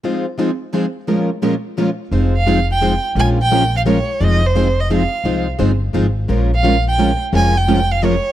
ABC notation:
X:1
M:3/4
L:1/16
Q:"Swing" 1/4=173
K:Fm
V:1 name="Violin"
z12 | z12 | z2 f4 g4 z2 | a2 g4 f2 d3- d/2 =d/2 |
e2 c4 e2 f4- | f2 z8 z2 | z2 f4 g4 z2 | a2 g4 f2 d4 |]
V:2 name="Steel-string acoustic guitar"
[F,A,EFc]2 z2 [F,A,EFc] z3 [F,A,EFc] z3 | [B,,F,A,DFB]2 z2 [B,,F,A,DFB] z3 [B,,F,A,DFB] z3 | [F,A,EFc]2 z2 [F,A,EFc] z3 [F,A,EFc] z3 | [F,A,DFB]2 z2 [F,A,DFB] z3 [F,A,DFB] z3 |
[F,A,EFc]2 z2 [F,A,EFc] z3 [F,A,EFc] z3 | [F,A,EFc]2 z2 [F,A,EFc] z3 [F,A,EFc] z3 | [F,A,DFB]2 z2 [F,A,DFB] z3 [F,A,DFB] z3 | [F,A,DFB]2 z2 [F,A,DFB] z3 [F,A,DFB] z3 |]
V:3 name="Steel-string acoustic guitar"
[F,CEA]2 z2 [F,CEA] z3 [F,CEA] z3 | [B,,F,A,DFB]2 z2 [B,,F,A,DFB] z3 [B,,F,A,DFB] z3 | [F,CEA]2 z2 [F,CEA] z3 [F,CEA] z3 | [F,A,DFB]2 z2 [F,A,DFB] z3 [F,A,DFB] z3 |
[F,CEA]2 z2 [F,CEA] z3 [F,CEA] z3 | [F,CEA]2 z2 [F,CEA] z3 [F,CEA] z3 | [F,A,DFB]2 z2 [F,A,DFB] z3 [F,A,DFB] z3 | [F,A,DFB]2 z2 [F,A,DFB] z3 [F,A,DFB] z3 |]
V:4 name="Upright bass" clef=bass
z12 | z12 | F,,,12 | B,,,12 |
F,,,12 | C,,4 G,,,4 A,,,4 | B,,,12 | F,,,12 |]